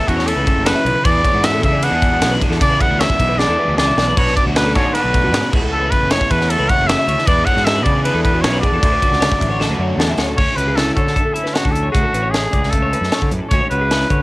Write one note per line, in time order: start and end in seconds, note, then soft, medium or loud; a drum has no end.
0.00 1.64 E3 medium
0.00 0.89 B3 medium
0.00 0.16 E5 medium
0.07 0.32 E2 loud
0.07 0.86 C#3 medium
0.07 1.03 E3 medium
0.07 0.85 A3 medium
0.07 0.28 C#4 medium
0.07 1.06 E4 medium
0.07 0.30 F#4 medium
0.07 0.84 A4 medium
0.07 kick medium
0.07 ride medium
0.17 0.27 C#5 medium
0.17 snare soft
0.26 0.84 C#4 medium
0.26 0.36 A4 medium
0.26 0.68 A4 medium
0.26 ride medium
0.36 0.44 C#2 medium
0.36 0.47 B4 medium
0.47 0.83 C#3 medium
0.47 0.66 C#5 medium
0.47 kick medium
0.47 ride medium
0.55 0.72 F#1 medium
0.66 1.08 F#4 medium
0.66 0.76 A4 medium
0.66 1.07 B4 loud
0.66 snare loud
0.66 ride loud
0.75 0.85 E5 medium
0.85 0.93 B1 loud
0.85 1.03 C#3 medium
0.85 0.95 C#5 medium
0.85 ride medium
0.95 1.04 B4 medium
1.04 1.21 E2 medium
1.04 2.59 E2 medium
1.04 1.82 E3 medium
1.04 1.84 B3 loud
1.04 1.85 D4 loud
1.04 1.86 G#4 loud
1.04 1.24 B4 loud
1.04 1.46 D5 loud
1.04 kick loud
1.04 ride loud
1.24 2.03 B3 medium
1.24 1.34 C#5 medium
1.24 kick medium
1.24 ride medium
1.34 1.63 G#2 medium
1.34 1.53 F#4 medium
1.44 2.59 G#3 medium
1.44 1.64 E5 loud
1.44 snare loud
1.44 ride medium
1.54 1.73 A4 medium
1.63 1.88 C#3 medium
1.63 2.59 E3 medium
1.63 1.85 E5 medium
1.63 kick medium
1.63 ride medium
1.73 1.82 D5 medium
1.83 2.59 E3 medium
1.83 2.61 B3 medium
1.83 2.62 D4 medium
1.83 2.42 D4 medium
1.83 2.61 G#4 medium
1.83 1.93 B4 medium
1.83 2.34 F#5 loud
1.83 ride loud
1.91 2.22 E2 medium
1.91 2.12 G#4 medium
2.02 2.81 B3 medium
2.02 kick medium
2.02 ride medium
2.12 2.31 F#4 medium
2.21 2.37 B1 loud
2.21 2.59 B2 medium
2.21 snare loud
2.21 ride loud
2.31 2.41 B4 medium
2.41 3.38 D4 medium
2.41 2.50 G#4 medium
2.41 kick medium
2.41 ride medium
2.50 2.58 E2 medium
2.50 2.70 A4 medium
2.50 snare soft
2.60 4.15 E2 medium
2.60 2.77 C#3 medium
2.60 3.37 E3 loud
2.60 3.39 B3 loud
2.60 3.38 D4 loud
2.60 3.39 G#4 loud
2.60 2.83 D5 loud
2.60 kick loud
2.60 ride loud
2.70 2.90 B4 medium
2.81 2.91 A3 medium
2.81 3.02 F#5 loud
2.81 kick medium
2.81 ride medium
2.88 3.05 D2 medium
2.88 3.59 B3 soft
2.99 4.15 G#3 medium
2.99 3.09 C#5 medium
2.99 3.40 E5 loud
2.99 snare loud
2.99 ride loud
3.09 3.29 E5 medium
3.09 kick medium
3.19 3.44 B1 medium
3.19 4.14 E3 medium
3.19 kick medium
3.19 ride medium
3.29 3.38 B4 medium
3.38 4.15 E3 medium
3.38 4.18 B3 medium
3.38 3.97 D4 medium
3.38 4.16 D4 medium
3.38 3.48 G#4 medium
3.38 4.17 G#4 medium
3.38 3.77 D5 loud
3.38 snare medium
3.48 3.56 E2 medium
3.48 3.58 A4 medium
3.59 3.69 A3 medium
3.59 3.78 B4 medium
3.68 3.76 D2 loud
3.68 4.17 B3 soft
3.77 3.95 C#2 medium
3.77 4.15 B2 medium
3.77 3.88 G#4 medium
3.77 4.19 D5 loud
3.77 snare medium
3.87 3.97 E5 medium
3.96 4.14 B1 medium
3.96 4.95 D4 medium
3.96 4.07 D5 medium
3.96 snare medium
4.08 4.16 B4 medium
4.17 4.33 B1 medium
4.17 4.93 B2 medium
4.17 4.75 B2 medium
4.17 4.96 F#3 medium
4.17 4.97 B3 loud
4.17 4.94 D4 medium
4.17 4.98 F#4 loud
4.17 4.36 B4 medium
4.17 4.36 C#5 loud
4.17 kick loud
4.17 crash medium
4.27 snare soft
4.36 4.46 C#5 medium
4.36 4.45 D5 medium
4.36 kick medium
4.36 ride medium
4.45 4.76 D2 medium
4.45 4.66 F#4 medium
4.56 5.50 A3 medium
4.56 4.73 B4 medium
4.56 snare loud
4.56 ride medium
4.66 4.85 A4 medium
4.75 4.99 G#2 medium
4.75 5.53 D3 medium
4.75 4.95 C#5 medium
4.75 kick medium
4.75 snare soft
4.75 ride medium
4.85 4.94 D5 medium
4.94 5.51 B2 medium
4.94 5.52 F#3 medium
4.94 5.52 B3 medium
4.94 5.53 D4 medium
4.94 5.52 B4 loud
4.94 5.04 B4 medium
4.94 ride medium
4.98 5.53 D4 medium
4.98 5.54 F#4 medium
5.04 5.33 B1 medium
5.04 5.23 A4 medium
5.14 5.33 A2 medium
5.14 kick medium
5.14 ride medium
5.24 5.43 F#4 medium
5.33 5.41 G#2 loud
5.33 5.53 B2 medium
5.33 snare loud
5.33 ride loud
5.43 5.52 B4 medium
5.51 5.93 C#2 loud
5.51 6.28 C#3 medium
5.51 6.11 C#3 medium
5.51 6.31 E3 medium
5.51 6.10 E3 medium
5.51 6.29 A3 medium
5.51 5.92 B3 medium
5.51 6.29 E4 medium
5.51 5.62 G#4 medium
5.51 6.28 A4 loud
5.51 kick loud
5.51 crash medium
5.56 5.72 C#4 medium
5.56 6.31 F#4 medium
5.62 5.81 A4 medium
5.73 6.49 C#4 medium
5.73 5.92 A4 medium
5.81 6.01 B4 medium
5.90 7.05 B3 medium
5.90 6.13 B4 medium
5.90 kick medium
5.90 ride medium
6.01 6.17 F#1 medium
6.11 7.27 E3 medium
6.11 6.20 C#5 medium
6.11 6.32 C#5 loud
6.11 snare loud
6.11 ride medium
6.20 6.40 E5 medium
6.20 kick medium
6.29 6.55 E2 loud
6.29 7.08 C#3 medium
6.29 7.26 E3 medium
6.29 7.07 A3 medium
6.29 7.28 E4 medium
6.29 6.88 F#4 medium
6.29 7.06 A4 medium
6.29 6.52 B4 medium
6.29 kick medium
6.29 ride medium
6.40 6.50 C#5 medium
6.40 snare soft
6.50 7.06 C#4 medium
6.50 6.59 A4 medium
6.50 6.71 A4 medium
6.50 ride loud
6.59 6.67 C#2 medium
6.59 6.68 B4 medium
6.69 7.05 C#3 medium
6.69 6.89 C#5 medium
6.69 6.89 F#5 loud
6.69 kick medium
6.69 ride medium
6.78 6.94 F#1 loud
6.87 7.29 F#4 medium
6.87 6.98 A4 medium
6.87 7.29 E5 loud
6.87 snare loud
6.87 ride loud
6.99 7.07 E5 medium
7.07 7.15 D2 medium
7.07 7.24 C#3 medium
7.07 7.18 C#5 medium
7.07 ride medium
7.18 7.26 B4 medium
7.18 snare soft
7.26 8.79 E2 medium
7.26 7.43 E2 medium
7.26 8.03 E3 medium
7.26 7.85 E3 medium
7.26 7.65 G#3 medium
7.26 8.03 B3 loud
7.26 7.46 B3 medium
7.26 8.06 D4 medium
7.26 8.05 D4 medium
7.26 8.04 G#4 loud
7.26 7.46 B4 medium
7.26 7.47 D5 loud
7.26 kick loud
7.26 ride loud
7.45 7.56 A3 medium
7.45 7.56 C#5 medium
7.45 7.66 F#5 loud
7.45 kick medium
7.45 ride medium
7.56 7.86 G#2 medium
7.56 8.24 B3 soft
7.56 7.75 F#4 medium
7.56 snare soft
7.65 8.80 G#3 medium
7.65 7.85 E5 loud
7.65 snare loud
7.65 ride medium
7.76 7.95 B4 medium
7.83 8.09 C#3 medium
7.83 8.86 E3 medium
7.83 8.03 D5 medium
7.83 kick medium
7.83 ride medium
7.95 8.06 D5 medium
8.03 8.82 E3 medium
8.03 8.81 B3 medium
8.03 8.64 D4 medium
8.03 8.83 D4 medium
8.03 8.82 G#4 medium
8.03 8.22 B4 medium
8.03 8.15 B4 medium
8.03 ride medium
8.14 8.45 E2 medium
8.14 8.34 A4 medium
8.23 8.80 B3 medium
8.23 8.43 B4 medium
8.23 kick medium
8.23 ride medium
8.34 8.53 F#4 medium
8.41 8.59 B1 loud
8.41 8.80 B2 medium
8.41 8.60 C#5 medium
8.41 snare loud
8.41 ride medium
8.53 8.62 B4 medium
8.61 9.02 D4 medium
8.61 8.72 G#4 medium
8.61 9.94 D5 medium
8.61 kick medium
8.61 ride medium
8.72 8.80 E2 loud
8.72 8.92 A4 medium
8.81 8.98 D2 loud
8.81 11.94 D2 medium
8.81 9.58 D3 loud
8.81 9.59 F#3 medium
8.81 9.59 A3 medium
8.81 9.59 D4 medium
8.81 9.60 F#4 loud
8.81 kick loud
8.81 ride loud
8.92 9.11 B4 medium
9.02 9.60 F#4 medium
9.02 kick medium
9.02 ride medium
9.11 9.27 C#2 medium
9.11 snare soft
9.21 10.36 A3 medium
9.21 9.31 C#5 medium
9.21 snare loud
9.21 ride loud
9.31 9.50 E5 medium
9.31 kick medium
9.41 9.65 A1 medium
9.41 kick medium
9.41 ride medium
9.50 9.60 C#5 medium
9.59 10.36 D3 medium
9.59 10.37 F#3 medium
9.59 10.37 A3 medium
9.59 10.37 D4 medium
9.59 9.80 F#4 medium
9.59 10.38 F#4 medium
9.59 9.70 A4 medium
9.59 snare medium
9.69 9.77 D2 medium
9.69 9.80 B4 medium
9.78 9.96 F#2 medium
9.78 10.19 F#4 medium
9.78 9.99 C#5 medium
9.97 10.15 E2 medium
9.97 10.38 A2 medium
9.97 10.09 A4 medium
9.97 snare loud
10.09 10.19 E5 medium
10.17 10.35 D2 medium
10.17 10.36 F#4 medium
10.17 10.28 C#5 medium
10.17 snare medium
10.29 10.38 A4 medium
10.37 10.46 D2 medium
10.37 11.18 A3 medium
10.37 10.78 C#4 medium
10.37 10.58 C#5 loud
10.37 kick loud
10.37 crash medium
10.41 10.58 F#4 medium
10.48 10.67 C#5 medium
10.56 10.89 C#2 medium
10.56 13.54 F#4 medium
10.56 10.77 B4 medium
10.56 closed hi-hat medium
10.68 10.76 G#4 medium
10.76 11.37 C#4 soft
10.76 10.96 E4 medium
10.76 10.94 A4 medium
10.76 snare medium
10.76 closed hi-hat medium
10.94 11.13 D3 medium
10.94 12.96 D3 medium
10.94 11.35 A4 medium
10.94 11.16 C#5 medium
10.94 kick medium
10.94 closed hi-hat soft
11.07 snare soft
11.16 11.96 A3 medium
11.16 11.24 A4 medium
11.16 kick medium
11.16 closed hi-hat medium
11.25 11.35 A4 medium
11.34 11.97 C#4 medium
11.34 11.55 E4 medium
11.34 11.44 E5 medium
11.34 closed hi-hat medium
11.44 11.54 B4 medium
11.44 snare soft
11.54 11.95 A2 medium
11.54 11.73 F#4 medium
11.54 11.64 C#5 medium
11.54 snare loud
11.54 closed hi-hat medium
11.64 11.89 D2 medium
11.64 11.84 A4 medium
11.64 kick medium
11.72 11.91 A4 medium
11.72 closed hi-hat medium
11.83 11.93 C#5 medium
11.92 12.02 D2 medium
11.92 12.32 F#4 medium
11.92 12.03 G#4 medium
11.92 kick loud
11.92 closed hi-hat medium
11.96 12.74 A3 medium
11.96 12.16 C#4 medium
12.03 12.13 A4 medium
12.13 12.46 A1 medium
12.13 12.34 C#4 medium
12.13 12.23 B4 medium
12.13 closed hi-hat medium
12.23 12.43 C#5 medium
12.30 12.71 G#4 medium
12.30 snare medium
12.30 closed hi-hat medium
12.35 12.93 C#4 soft
12.43 12.52 A4 medium
12.52 12.94 C#2 medium
12.52 12.72 D5 medium
12.52 kick medium
12.52 closed hi-hat medium
12.63 snare soft
12.70 13.30 A4 medium
12.70 kick medium
12.70 closed hi-hat medium
12.74 13.53 A3 medium
12.82 12.92 C#5 medium
12.92 13.53 C#4 medium
12.92 13.11 B4 medium
12.92 closed hi-hat medium
13.01 13.09 F#2 medium
13.01 snare soft
13.12 13.52 A2 medium
13.12 13.32 C#5 medium
13.12 snare loud
13.12 closed hi-hat medium
13.22 13.30 D3 medium
13.22 kick medium
13.31 13.39 F#2 medium
13.31 13.42 B4 medium
13.31 closed hi-hat medium
13.42 13.51 A4 medium
13.49 13.59 D2 medium
13.49 14.22 G#3 medium
13.49 13.68 C#5 loud
13.49 kick loud
13.49 closed hi-hat medium
13.54 13.91 C#4 medium
13.54 13.71 F#4 medium
13.61 13.80 C#5 medium
13.70 14.03 C#2 medium
13.70 14.22 F#4 medium
13.70 14.22 B4 medium
13.70 closed hi-hat soft
13.81 13.90 G#4 medium
13.91 14.22 C#4 medium
13.91 14.10 E4 medium
13.91 snare medium
13.91 closed hi-hat medium
14.01 snare soft
14.10 14.22 D3 medium
14.10 14.22 C#5 medium
14.10 kick medium
14.10 closed hi-hat medium